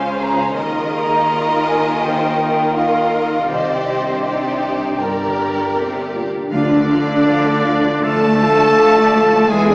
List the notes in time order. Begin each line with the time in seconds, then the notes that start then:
Already playing: C#2 C#3 F3 G#3 F4 C5 F5 G#5
0.02 F4
0.09 C#5
0.20 G#4 A#5
0.33 F4
0.40 C#5
0.55 D#2 D#3 F4 A#4 D#5
0.82 A#3
0.93 G#4 A#5
1.07 D#4
1.30 F4 A#4
1.55 A#4
1.67 G#5
1.79 D#4
2.03 D#3 C5 G5
2.28 A#3
2.40 A#4
2.52 D#4
2.75 F4 A#4 D#5 F5
3.02 A#4
3.26 D#4
3.50 C2 C3 G4 C5 D5 D#5
3.75 G3
3.87 C5
4.00 D4
4.23 D#4 G4 C5 D5 G5
4.50 C5
4.75 D4
4.99 G1 G2 G4 A#4 D5 A#5
5.26 D3
5.51 D4
5.76 C3 G4
6.02 D5
6.14 A#2
6.27 D4
6.51 D2 D3 F3 D4 F4 D5 F5
6.70 A3 D4 D5
6.89 F3 F4 D5 F5
7.08 A3 D4 D5 F5
7.27 D2 F3 F4 F5 D6
7.45 A3 D4 D5
7.64 F3 F4 D5 F5
7.83 A3 D4 F4 D5
8.03 D2 F3 A3 F4 A4 F5 A5
8.21 A3 D4 D5
8.39 F3 F4 D5 F5
8.58 A3 D4 D5 F5
8.77 D2 F3 F4 F5 D6
8.96 A3 D4 D5 F5
9.14 F3 F4 D5 F5
9.31 A3 D4 F4 D5
9.49 E2 E3 G#3 B3 E4 G#4 E5 G#5
9.67 G#3 D4 D5